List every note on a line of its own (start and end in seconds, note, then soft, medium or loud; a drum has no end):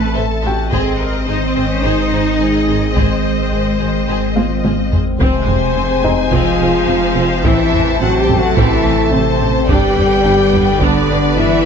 0.00 0.74 A1 medium
0.00 0.68 E3 medium
0.00 0.16 A3 medium
0.00 0.72 C4 medium
0.00 0.40 A4 soft
0.00 0.72 A4 medium
0.00 0.15 B4 medium
0.00 0.68 E5 medium
0.00 0.68 A5 medium
0.00 1.53 A5 soft
0.15 0.23 A1 medium
0.15 0.44 A4 medium
0.15 0.23 C5 medium
0.15 0.23 E5 medium
0.42 0.52 A1 soft
0.42 0.72 F#4 medium
0.42 0.50 C5 soft
0.42 0.50 E5 medium
0.46 2.09 G4 soft
0.46 2.10 G5 medium
0.72 5.20 G#1 medium
0.72 0.80 G#1 medium
0.72 5.21 D#3 medium
0.72 5.21 G#3 medium
0.72 1.25 C4 medium
0.72 5.17 C4 medium
0.72 0.98 G#4 medium
0.72 1.00 G#4 soft
0.72 0.98 C5 medium
0.72 5.20 C5 medium
0.72 4.97 D#5 medium
0.72 taiko medium
1.00 1.28 A#4 medium
1.27 1.36 G#1 soft
1.27 1.47 D#4 medium
1.27 1.35 G#4 soft
1.27 1.35 C5 soft
1.27 2.38 C5 medium
1.48 1.66 C4 medium
1.55 1.64 G#1 soft
1.55 1.63 G#4 soft
1.55 1.64 C5 soft
1.67 1.85 C#4 medium
1.83 1.91 G#1 soft
1.83 2.96 D#4 medium
1.83 2.10 G#4 soft
1.83 2.10 C5 soft
2.11 2.19 G#1 soft
2.11 2.20 G#4 soft
2.11 2.20 C5 soft
2.40 2.48 G#1 soft
2.40 2.48 G#4 soft
2.40 2.95 G#4 medium
2.40 2.48 C5 soft
2.68 2.76 G#1 soft
2.68 2.77 G#4 soft
2.68 2.77 C5 soft
2.96 3.04 G#1 soft
2.96 4.61 G#3 medium
2.96 3.22 G#4 soft
2.96 3.22 C5 soft
2.96 4.93 C5 soft
2.96 taiko medium
3.52 3.60 G#1 soft
3.52 3.60 G#4 soft
3.52 3.61 C5 soft
3.80 3.88 G#1 soft
3.80 3.88 G#4 soft
3.80 3.88 C5 soft
4.08 4.16 G#1 soft
4.08 4.34 G#4 soft
4.08 4.34 C5 soft
4.36 4.44 G#1 soft
4.36 5.17 F4 soft
4.36 4.44 G#4 soft
4.36 4.45 C5 soft
4.36 5.16 F5 soft
4.36 taiko high medium
4.64 4.72 G#1 soft
4.64 4.72 G#4 soft
4.64 4.73 C5 soft
4.64 taiko high medium
4.91 4.99 G#1 soft
4.91 5.00 G#4 soft
4.91 5.00 C5 soft
4.91 taiko low medium
5.20 5.28 F1 medium
5.20 7.46 F1 medium
5.20 6.29 C3 medium
5.20 9.65 C3 medium
5.20 7.41 F3 medium
5.20 7.41 G#3 medium
5.20 6.29 C4 medium
5.20 5.47 C4 medium
5.20 9.66 C4 medium
5.20 7.41 G#4 medium
5.20 6.29 C5 medium
5.20 9.65 C5 medium
5.20 7.41 G#5 medium
5.20 taiko medium
5.47 5.55 F1 soft
5.47 5.56 C4 soft
5.47 taiko low soft
5.75 5.83 F1 soft
5.75 5.85 C4 soft
6.03 6.11 F1 soft
6.03 6.12 C4 medium
6.03 7.69 D#4 soft
6.03 7.69 D#5 medium
6.03 taiko low soft
6.32 6.40 F1 medium
6.32 7.43 F3 medium
6.32 6.58 C4 medium
6.32 7.43 F4 medium
6.32 7.42 F5 medium
6.32 taiko medium
6.60 6.68 F1 soft
6.60 6.69 C4 medium
6.88 6.96 F1 soft
6.88 6.96 C4 medium
7.15 7.24 F1 soft
7.15 7.24 C4 medium
7.15 8.80 C5 soft
7.43 7.52 A1 medium
7.43 9.71 A1 medium
7.43 8.01 E3 medium
7.43 9.70 E3 medium
7.43 9.65 A3 medium
7.43 7.71 C4 medium
7.43 7.99 E4 medium
7.43 9.70 A4 medium
7.43 8.01 E5 medium
7.43 9.65 A5 medium
7.43 taiko loud
7.73 7.81 A1 soft
7.73 7.81 C4 soft
7.73 taiko low soft
8.00 8.08 A1 medium
8.00 8.19 F#3 medium
8.00 8.09 C4 soft
8.00 8.20 F#4 medium
8.00 8.19 F#5 medium
8.19 8.38 G3 medium
8.19 8.39 G4 medium
8.19 8.38 G5 medium
8.29 8.37 A1 medium
8.29 8.37 C4 medium
8.29 taiko low soft
8.38 8.57 F#3 medium
8.38 8.57 F#4 medium
8.38 8.57 F#5 medium
8.56 8.65 A1 medium
8.56 9.13 E3 medium
8.56 8.83 C4 medium
8.56 9.13 E4 medium
8.56 9.13 E5 medium
8.56 taiko medium
8.85 8.93 A1 medium
8.85 8.93 C4 soft
9.12 9.21 A1 medium
9.12 9.68 C3 medium
9.12 9.69 C4 medium
9.12 9.21 C4 medium
9.12 9.68 C5 medium
9.41 9.49 A1 soft
9.41 9.49 C4 medium
9.69 9.77 G1 medium
9.69 11.65 G1 medium
9.69 11.65 D3 medium
9.69 10.79 G3 medium
9.69 11.65 B3 medium
9.69 9.95 D4 medium
9.69 10.79 G4 loud
9.69 11.65 G4 medium
9.69 11.65 B4 medium
9.69 11.65 D5 medium
9.69 10.81 G5 medium
9.69 taiko medium
9.97 10.05 G1 medium
9.97 10.05 D4 soft
9.97 taiko low soft
10.24 10.33 G1 soft
10.24 10.33 D4 soft
10.24 11.65 G5 medium
10.53 10.61 G1 medium
10.53 10.62 D4 medium
10.53 taiko low medium
10.80 10.89 G1 medium
10.80 11.38 D3 medium
10.80 11.37 D4 medium
10.80 11.08 D4 medium
10.80 11.37 D5 medium
10.80 taiko medium
11.09 11.17 G1 medium
11.09 11.18 D4 soft
11.36 11.45 G1 medium
11.36 11.65 E3 medium
11.36 11.46 D4 medium
11.36 11.65 E4 medium
11.36 11.65 E5 medium